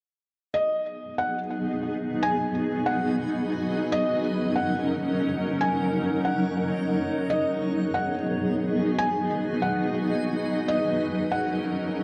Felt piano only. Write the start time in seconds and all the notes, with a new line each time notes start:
0.54 D#5
1.18 F#5
2.23 G#5
2.86 F#5
3.92 D#5
4.56 F#5
5.61 G#5
6.25 F#5
7.30 D#5
7.94 F#5
8.99 G#5
9.62 F#5
10.68 D#5
11.32 F#5